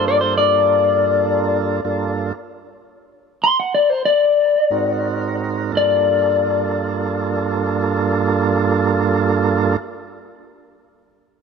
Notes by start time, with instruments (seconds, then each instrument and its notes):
Already playing: tonewheel organ G2 A#3 D4 F4 A4
0.08 clean electric guitar D5
0.21 clean electric guitar C5
0.38 clean electric guitar D5
1.85 tonewheel organ G2 A#3 D4 F4 A4
3.44 clean electric guitar C6
3.60 clean electric guitar F#5
3.75 clean electric guitar D5
3.90 clean electric guitar C5
4.05 clean electric guitar D5
4.70 tonewheel organ G#2 C4 D#4 F#4 A#4
5.72 tonewheel organ G2 A#3 D4 F4 A4
5.77 clean electric guitar D5